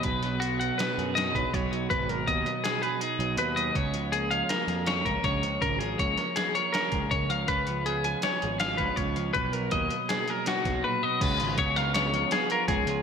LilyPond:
<<
  \new Staff \with { instrumentName = "Clean electric guitar" } { \time 5/4 \key b \lydian \tempo 4 = 161 b'4 fis'8 fis''8 b'4 dis''8 b'8 cis''4 | b'8 ais'8 dis''4 gis'8 b'8 gis'4 b'8 dis''8 | cis''4 gis'8 eis''8 ais'4 cis''8 ais'8 cis''4 | ais'8 gis'8 cis''4 gis'8 cis''8 ais'4 cis''8 eis''8 |
b'4 gis'8 gis''8 cis''4 eis''8 b'8 cis''4 | b'8 ais'8 dis''4 gis'8 ais'8 fis'4 b'8 dis''8 | b'4 cis''8 eis''8 cis''4 gis'8 ais'8 gis'4 | }
  \new Staff \with { instrumentName = "Clean electric guitar" } { \clef bass \time 5/4 \key b \lydian << { r4 b4 b8 gis'8 dis'2 | r4 b4 b8 gis'8 dis'2 | r4 ais4 ais8 ais'8 cis'2~ | cis'4 ais4 ais8 ais'8 cis'2~ |
cis'4 b4 b8 gis'8 eis'2 | r4 ais4 ais8 ais'8 cis'16 dis'4.~ dis'16 | r8 eis'8 b8 ais'8 b4 b8 eis'4 eis'8 | } \\ { b,8 fis4 fis2 fis8 b,8 fis8 | b,8 fis4 fis2 fis8 b,8 fis8 | cis8 eis4 eis2 eis8 cis8 eis8 | cis8 eis4 eis2 eis8 cis8 eis8 |
cis8 eis4 eis2 eis8 cis8 eis8 | b,8 fis4 fis2 fis8 ais,8 b,8 | cis2~ cis8 eis4. cis4 | } >> }
  \new Staff \with { instrumentName = "Picked electric bass" } { \clef bass \time 5/4 \key b \lydian b,,2 r8 fis,4 b,,16 r16 b,,4 | gis,,4 dis,8 r2 b,,8 dis,4 | cis,2 r8 eis,4 cis,16 r16 cis,4 | gis,,4 cis,8 r2 cis,8 cis,4 |
cis,2 r8 gis,,4 cis,16 r16 cis,4 | b,,4 dis,8 r2 b,,8 r4 | cis,8 gis,,8 cis,2 r4 cis,8 cis,8 | }
  \new DrumStaff \with { instrumentName = "Drums" } \drummode { \time 5/4 <hh bd>8 <hh sn>8 hh8 hh8 <hh sn>8 hh8 <hh sn>8 <hh bd>8 <hh bd>8 hh8 | <hh bd>8 hh8 <hh bd>8 hh8 <hh sn>8 hh8 hh8 hh8 hh8 hh8 | <hh bd>8 hh8 hh8 hh8 <hh sn>8 <hh sn>8 <hh sn>8 <hh bd>8 <hh bd sn>8 hh8 | <hh bd>8 hh8 <hh bd>8 <hh sn>8 <hh sn>8 hh8 <hh sn>8 <hh bd>8 <hh bd>8 hh8 |
<hh bd>8 hh8 hh8 hh8 <hh sn>8 hh8 <hh sn>8 <hh bd>8 <hh bd>8 hh8 | <hh bd>8 hh8 <hh bd>8 hh8 <hh sn>8 hh8 <hh sn>8 <hh bd sn>8 r4 | <cymc hh bd>8 hh8 <hh bd>8 <hh sn>8 <hh sn>8 hh8 <hh sn>8 hh8 <hh bd>8 hh8 | }
>>